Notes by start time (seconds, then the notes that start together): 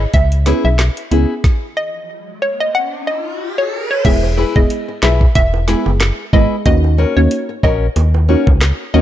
0.14 C#2 E5, kick, closed hi-hat
0.32 closed hi-hat
0.46 B3 C#4 E4 G#4 B4, snare, closed hi-hat
0.64 B1 E5
0.79 snare, clap, closed hi-hat
0.97 closed hi-hat
1.11 C#2 B3 C#4 E4 G#4 B4, closed hi-hat
1.44 kick, snare, riser
1.77 D#5
2.42 C#5
2.60 D#5
2.75 F#5
3.07 D#5
3.58 C#5
3.91 C#5
4.05 E1 G#3 B3 E4 G#4 E5, kick, closed hi-hat, crash, high bongo
4.23 high bongo
4.37 E4 G#4 B4, high bongo
4.55 E1 G#3 B3 E4 G#4 D#5, kick
4.70 closed hi-hat
4.88 muted nylon-string guitar stroke
5.02 B1 E4 G#4 B4 E5, snare, clap, low bongo
5.21 kick
5.35 E1 E5, kick, closed hi-hat, high bongo
5.54 high bongo
5.68 G#3 B3 E4 G#4 B4, snare, high bongo
5.86 F#1, high bongo
6.00 cross-stick, snare, clap, closed hi-hat
6.33 G#1 G#3 B3 E4 G#4 B4 D#5, kick, low bongo
6.65 D#2 A#3 C#4 D#4 F#4 D#5, kick, closed hi-hat, high bongo
6.84 high bongo
6.98 C#4 F#4 A#4, high bongo
7.16 D#2 A#3 C#4 D#4 F#4 C#5
7.31 closed hi-hat
7.49 muted nylon-string guitar stroke
7.63 A#1 C#4 F#4 A#4 D#5, kick, low bongo
7.96 D#2, closed hi-hat, high bongo
8.14 high bongo
8.29 A#3 C#4 D#4 F#4 A#4, high bongo
8.47 C#2, kick, high bongo
8.61 cross-stick, snare, clap, closed hi-hat
8.94 D#2 A#3 C#4 D#4 F#4 A#4 D#5, low bongo